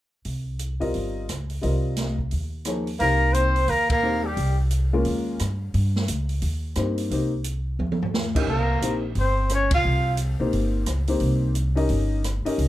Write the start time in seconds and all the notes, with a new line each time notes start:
0.25 C2, open hi-hat
0.59 closed hi-hat
0.80 G3 C4 F4 A#4 D#5, kick, open hi-hat
0.94 G1, open hi-hat
1.29 C#2, cross-stick, closed hi-hat
1.50 open hi-hat
1.61 C2 G3 C4 F4 A#4 D#5, open hi-hat
1.96 snare, closed hi-hat
2.18 kick
2.31 D#2, open hi-hat
2.65 F3 A#3 D#4 G#4 C#5, cross-stick, closed hi-hat
2.87 open hi-hat
2.99 C2 A#3 C4 D#4 G4 A#4 C5, open hi-hat
3.33 C4 C5, closed hi-hat
3.56 open hi-hat
3.68 D#2 A#3 A#4, open hi-hat
3.90 A#3 A#4, kick, ride
4.03 A#3 C4 D#4 G4 C5
4.24 G3 G4
4.37 C2, open hi-hat
4.71 closed hi-hat
4.93 G#3 A#3 C#4 F4 A#4
5.05 D#2, open hi-hat
5.39 G2, cross-stick, closed hi-hat
5.74 G2, open hi-hat
5.96 snare
6.08 C#2, closed hi-hat
6.29 open hi-hat
6.42 D#2, open hi-hat
6.75 G2 A#3 C4 D#4 G4 C5, cross-stick, closed hi-hat
6.98 open hi-hat
7.10 C2 A#3 C4 D#4 G4 C5, open hi-hat
7.44 closed hi-hat
7.79 D#2, high tom
7.92 high tom
8.02 floor tom
8.14 snare
8.35 C#4 D#4 G4 A#4 D#5, kick, crash
8.47 C2 A#3 A#4
8.81 A#1 A#3 C4 D#4 G4 C5, closed hi-hat
9.15 G1 C4, open hi-hat
9.19 C5
9.49 C#4, cross-stick, closed hi-hat
9.54 C#5
9.71 C#2 F5, kick, ride
9.75 F4
9.85 C2
10.17 closed hi-hat
10.40 B1 A#3 C4 D#4 G4 C5
10.53 G1, open hi-hat
10.86 C#2, cross-stick, closed hi-hat
11.07 A#3 C4 D#4 G4 C5, open hi-hat
11.20 C2, open hi-hat
11.55 closed hi-hat
11.75 C#4 D#4 G4 A#4 D#5, open hi-hat
11.89 G1, open hi-hat
12.24 cross-stick, closed hi-hat
12.45 C#4 D#4 G4 A#4 D#5, muted upright bass stroke, open hi-hat
12.58 C2, open hi-hat